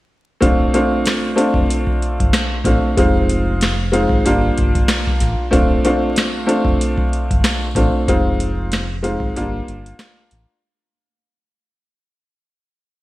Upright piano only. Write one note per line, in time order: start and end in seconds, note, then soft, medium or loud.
0.40 0.71 A3 medium
0.40 0.71 C4 medium
0.40 0.71 D4 medium
0.40 0.71 F4 loud
0.74 1.33 A3 medium
0.74 1.33 C4 medium
0.74 1.33 D4 medium
0.74 1.34 F4 loud
1.36 2.55 A3 medium
1.36 2.55 C4 medium
1.36 2.56 D4 medium
1.36 2.56 F4 loud
2.64 2.95 A3 medium
2.64 2.95 C4 medium
2.64 2.95 D4 medium
2.64 2.95 F4 medium
2.97 3.72 G#3 medium
2.97 3.72 C4 medium
2.97 3.72 D#4 medium
2.97 3.72 F4 loud
3.92 4.22 G#3 medium
3.92 4.22 C4 medium
3.92 4.22 D#4 medium
3.92 4.23 F4 loud
4.25 5.43 G3 medium
4.25 5.44 A#3 medium
4.25 5.44 D4 medium
4.25 5.44 F4 loud
5.51 5.81 A3 loud
5.51 5.81 C4 medium
5.51 5.82 D4 medium
5.51 5.82 F4 loud
5.84 6.44 A3 medium
5.84 6.44 C4 medium
5.84 6.44 D4 medium
5.84 6.44 F4 loud
6.46 7.66 A3 loud
6.46 7.66 C4 medium
6.46 7.66 D4 medium
6.46 7.67 F4 loud
7.75 8.05 A3 medium
7.75 8.05 C4 medium
7.75 8.06 D4 medium
7.75 8.06 F4 medium
8.08 8.82 G#3 medium
8.08 8.83 C4 medium
8.08 8.83 D#4 medium
8.08 8.83 F4 loud
9.02 9.33 G#3 medium
9.02 9.33 C4 medium
9.02 9.33 D#4 medium
9.02 9.33 F4 loud
9.36 10.54 G3 medium
9.36 10.54 A#3 medium
9.36 10.55 D4 medium
9.36 10.55 F4 loud